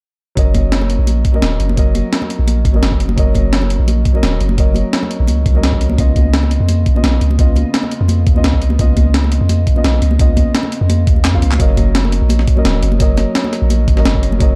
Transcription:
0.35 808-style bass F#1, grand piano F#3 C#4 A#4 D#5, kick, closed hi-hat
0.54 kick, closed hi-hat, high conga
0.72 snare, closed hi-hat
0.81 high conga
0.90 closed hi-hat
0.99 808-style bass A#1
1.07 closed hi-hat, high conga
1.25 kick, closed hi-hat
1.32 grand piano F#3 C#4 A#4 D#5, high conga
1.42 808-style bass D#1, snare, closed hi-hat
1.60 808-style bass F#1, closed hi-hat
1.69 high conga
1.76 grand piano F#3 C#4 A#4 D#5, kick, closed hi-hat
1.95 closed hi-hat, high conga
2.13 snare, closed hi-hat
2.22 high conga
2.30 closed hi-hat
2.39 808-style bass A#1
2.47 closed hi-hat, high conga
2.65 808-style bass G#1, kick, closed hi-hat
2.72 grand piano F#3 C#4 A#4 D#5, high conga
2.82 808-style bass F#1, snare, closed hi-hat
2.92 kick
3.00 closed hi-hat
3.09 high conga
3.16 808-style bass F#1, grand piano F#3 C#4 A#4 D#5, kick, closed hi-hat
3.35 kick, closed hi-hat, high conga
3.53 snare, closed hi-hat
3.62 high conga
3.70 closed hi-hat
3.79 808-style bass A#1
3.88 closed hi-hat, high conga
4.05 kick, closed hi-hat
4.13 grand piano F#3 C#4 A#4 D#5, high conga
4.23 808-style bass D#1, snare, closed hi-hat
4.40 808-style bass F#1, closed hi-hat
4.49 high conga
4.56 grand piano F#3 C#4 A#4 D#5, kick, closed hi-hat
4.75 closed hi-hat, high conga
4.93 snare, closed hi-hat
5.03 high conga
5.11 closed hi-hat
5.20 808-style bass A#1
5.27 808-style bass C#2, closed hi-hat, high conga
5.46 808-style bass C#2, kick, closed hi-hat
5.53 grand piano F#3 C#4 A#4 D#5, high conga
5.63 snare, closed hi-hat
5.72 kick
5.81 closed hi-hat
5.90 high conga
5.97 808-style bass C#2, grand piano C#3 B3 F4 D#5, kick, closed hi-hat
6.16 kick, closed hi-hat, high conga
6.34 snare, closed hi-hat
6.43 high conga
6.51 closed hi-hat
6.60 808-style bass F2
6.68 closed hi-hat, high conga
6.86 kick, closed hi-hat
6.94 grand piano C#3 B3 F4 D#5, high conga
7.04 808-style bass B1, snare, closed hi-hat
7.21 808-style bass C#2, closed hi-hat
7.31 high conga
7.37 grand piano C#3 B3 F4 D#5, kick, closed hi-hat
7.56 closed hi-hat, high conga
7.74 snare, closed hi-hat
7.83 high conga
7.91 closed hi-hat
8.01 808-style bass F2
8.08 closed hi-hat, high conga
8.27 808-style bass D#2, kick, closed hi-hat
8.34 grand piano C#3 B3 F4 D#5, high conga
8.44 808-style bass C#2, snare, closed hi-hat
8.53 kick
8.62 closed hi-hat
8.70 high conga
8.77 808-style bass C#2, grand piano C#3 B3 F4 D#5, kick, closed hi-hat
8.97 kick, closed hi-hat, high conga
9.14 snare, closed hi-hat
9.24 high conga
9.32 closed hi-hat
9.41 808-style bass F2
9.49 closed hi-hat, high conga
9.67 kick, closed hi-hat
9.74 grand piano C#3 B3 F4 D#5, high conga
9.84 808-style bass B1, snare, closed hi-hat
10.02 808-style bass C#2, closed hi-hat
10.11 high conga
10.18 grand piano C#3 B3 F4 D#5, kick, closed hi-hat
10.37 kick, closed hi-hat, high conga
10.55 snare, closed hi-hat
10.63 high conga
10.72 closed hi-hat
10.81 808-style bass F2
10.89 closed hi-hat, high conga
11.07 808-style bass D#2, kick, closed hi-hat
11.16 high conga
11.25 808-style bass F2, snare, clap, closed hi-hat
11.33 grand piano C#3 B3 F4 F5, kick
11.42 808-style bass C#2, closed hi-hat
11.51 clap, high conga
11.58 808-style bass F#1, grand piano F#3 C#4 A#4 D#5, kick, closed hi-hat
11.77 kick, closed hi-hat, high conga
11.95 snare, closed hi-hat
12.05 high conga
12.12 closed hi-hat
12.22 808-style bass A#1
12.29 closed hi-hat, high conga
12.39 snare
12.48 kick, closed hi-hat
12.55 grand piano F#3 C#4 A#4 D#5, high conga
12.65 808-style bass D#1, snare, closed hi-hat
12.82 808-style bass F#1, closed hi-hat
12.92 high conga
12.99 grand piano F#3 C#4 A#4 D#5, kick, closed hi-hat
13.17 snare, closed hi-hat, high conga
13.35 snare, closed hi-hat
13.44 high conga
13.53 snare, closed hi-hat
13.62 808-style bass A#1
13.70 closed hi-hat, high conga
13.88 808-style bass G#1, kick, closed hi-hat
13.95 grand piano F#3 C#4 A#4 D#5, snare, high conga
14.05 808-style bass F#1, snare, closed hi-hat
14.15 kick
14.23 closed hi-hat
14.32 high conga
14.39 808-style bass F#1, grand piano F#3 C#4 A#4 D#5, kick, closed hi-hat

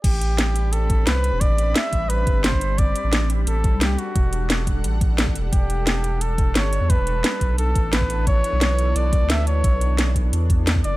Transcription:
0.04 sub bass A1, analog synth pad G3 C4 D4 B5, flugelhorn G4, kick, closed hi-hat, crash
0.21 closed hi-hat
0.38 snare, closed hi-hat
0.56 closed hi-hat
0.73 flugelhorn A4, closed hi-hat
0.90 kick, closed hi-hat
1.07 sub bass C2, flugelhorn B4, snare, closed hi-hat
1.24 closed hi-hat
1.32 sub bass E1
1.41 flugelhorn D5, kick, closed hi-hat
1.49 sub bass A1
1.58 closed hi-hat
1.75 flugelhorn E5, snare, closed hi-hat
1.93 sub bass A1, kick, closed hi-hat
2.09 flugelhorn B4, closed hi-hat
2.27 sub bass G1, kick, closed hi-hat
2.44 flugelhorn C5, snare, closed hi-hat
2.53 kick
2.61 closed hi-hat
2.78 flugelhorn D5, kick, closed hi-hat
2.96 closed hi-hat
3.04 sub bass A1
3.13 snare, closed hi-hat
3.30 closed hi-hat
3.47 sub bass A1, flugelhorn A4, closed hi-hat
3.64 kick, closed hi-hat
3.73 sub bass C2
3.81 flugelhorn G4, snare, closed hi-hat
3.98 analog synth pad D4 A4 F#5, flugelhorn F#4, closed hi-hat
4.16 sub bass E1, kick, closed hi-hat
4.33 closed hi-hat
4.50 snare, closed hi-hat
4.67 kick, closed hi-hat
4.84 sub bass A1, closed hi-hat
5.01 kick, closed hi-hat
5.18 snare, closed hi-hat
5.27 kick
5.35 sub bass E1, closed hi-hat
5.53 sub bass E1, flugelhorn G4, kick, closed hi-hat
5.70 closed hi-hat
5.87 snare, closed hi-hat
6.04 closed hi-hat
6.21 flugelhorn A4, closed hi-hat
6.38 kick, closed hi-hat
6.55 sub bass G1, flugelhorn C#5, snare, closed hi-hat
6.73 closed hi-hat
6.81 sub bass E2
6.90 flugelhorn B4, kick, closed hi-hat
6.98 sub bass E1
7.07 closed hi-hat
7.24 snare, closed hi-hat
7.41 sub bass B1, analog synth pad E3 B3, kick, closed hi-hat
7.58 flugelhorn A4, closed hi-hat
7.75 sub bass A1, kick, closed hi-hat
7.93 flugelhorn B4, snare, closed hi-hat
8.01 kick
8.10 closed hi-hat
8.27 flugelhorn C#5, kick, closed hi-hat
8.44 closed hi-hat
8.53 sub bass B1
8.61 snare, closed hi-hat
8.79 closed hi-hat
8.96 sub bass B1, flugelhorn D5, closed hi-hat
9.13 kick, closed hi-hat
9.21 sub bass D2
9.30 flugelhorn E5, snare, closed hi-hat
9.47 flugelhorn C#5, closed hi-hat
9.64 sub bass B1, kick, closed hi-hat
9.81 closed hi-hat
9.99 snare, closed hi-hat
10.15 kick, closed hi-hat
10.33 sub bass E2, closed hi-hat
10.50 kick, closed hi-hat
10.67 snare, closed hi-hat
10.75 kick
10.84 sub bass F#1, flugelhorn D5, closed hi-hat

